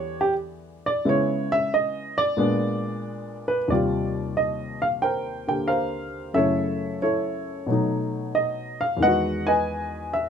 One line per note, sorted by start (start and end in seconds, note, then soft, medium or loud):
0.00 1.02 E2 medium
0.00 1.04 D3 medium
0.00 1.05 E3 medium
0.00 1.06 G3 medium
0.00 1.04 B3 soft
0.00 1.05 E4 medium
0.00 0.19 G4 medium
0.00 0.20 C#5 medium
0.21 0.32 G4 medium
0.86 1.05 D5 medium
1.05 2.38 C#3 medium
1.05 2.36 G#3 soft
1.05 2.37 B3 soft
1.05 2.38 E4 medium
1.05 1.51 C#5 medium
1.52 1.71 E5 loud
1.74 2.17 D#5 medium
2.18 3.56 D5 loud
2.37 3.70 A#2 medium
2.37 3.70 G#3 medium
2.37 3.70 B3 medium
2.37 3.71 D4 medium
3.48 3.71 B4 medium
3.68 6.34 D#2 soft
3.68 6.35 C3 soft
3.68 6.36 G3 soft
3.68 4.39 D5 medium
3.72 5.00 F4 medium
3.72 5.00 G4 medium
4.37 4.79 D#5 medium
4.82 4.87 F5 medium
5.02 5.67 A#4 medium
5.02 5.67 C5 medium
5.02 5.47 G5 medium
5.47 6.35 D3 soft
5.47 6.36 A#3 soft
5.47 6.36 G4 soft
5.47 5.68 G5 medium
5.68 6.31 A#4 medium
5.68 6.31 C5 medium
5.68 6.31 F5 medium
6.34 7.67 F#2 soft
6.34 7.68 C#3 soft
6.34 7.68 A3 soft
6.34 7.02 A4 medium
6.34 7.01 C#5 medium
6.34 6.97 E5 medium
6.38 7.02 E4 medium
7.02 7.65 E4 medium
7.02 8.31 A4 medium
7.02 8.31 C#5 medium
7.67 9.00 B2 medium
7.67 9.01 F#3 soft
7.67 9.02 A3 soft
7.72 9.03 D#4 medium
8.35 8.82 D#5 medium
8.81 9.00 F5 medium
8.97 10.29 E2 medium
8.97 10.29 D#3 soft
9.03 10.29 G#3 soft
9.03 9.46 B4 medium
9.03 9.47 D#5 medium
9.03 9.49 F#5 loud
9.08 10.29 F#4 medium
9.47 10.29 B4 medium
9.47 10.29 D#5 medium
9.47 10.09 G#5 medium
10.13 10.29 E5 medium